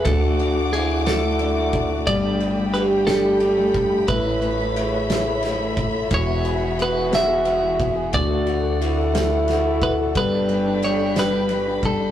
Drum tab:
RD |xxxxxx|xxxxxx|xxxxxx|xxxxxx|
SD |---o--|---o--|---oo-|---o--|
BD |o----o|o----o|o----o|o----o|

RD |xxxxxx|xxxxxx|
SD |---oo-|---o--|
BD |o----o|o----o|